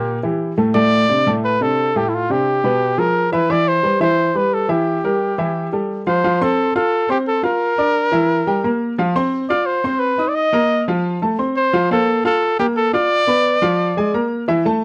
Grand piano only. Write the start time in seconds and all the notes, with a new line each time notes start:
Already playing: A#2 A#3 A#4
0.23 E3 E4 G4
0.57 A2 A3 A4
0.74 A2 A3 A4
1.09 C3 C4 D4
1.26 A2 A3 A4
1.61 C3 C4 D4
1.96 A2 A3 A4
2.30 C3 C4 D4
2.64 B2 B3 B4
2.98 F3 F4 G#4
3.32 E3 E4 E5
3.50 E3 E4 E5
3.83 G3 G4 B4
4.00 E3 E4 E5
4.35 G3 G4 B4
4.69 E3 E4 E5
5.04 G3 G4 A#4
5.38 E3 E4 E5
5.72 G3 G4 A4
6.07 F3 F4 F5
6.24 F3 F4 F5
6.41 C4 C5 C6
6.76 F4 F5 F6
7.09 C4 C5 C6
7.43 F4 F5 F6
7.78 D4 D5 D6
8.12 E3 E4 E5
8.47 G3 G4 G5
8.64 A#3 A#4 A#5
8.98 F3 F4 F5
9.16 C4 C5 C6
9.50 F4 F5 F6
9.84 C4 C5 C6
10.18 D#4 D#5 D#6
10.53 A#3 A#4 A#5
10.88 F3 F4 F5
11.22 A3 A4 A5
11.38 C4 C5 C6
11.73 F3 F4 F5
11.91 A#3 C5 F5
12.25 F4 F5 F6
12.59 A#3 A#4 A#5
12.93 F4 F5 F6
13.27 B3 B4 B5
13.62 F3 F4 F5
13.97 G#3 G#4 G#5
14.14 A#3 A#4 A#5
14.48 E3 E4 E5
14.65 A3 A4 A5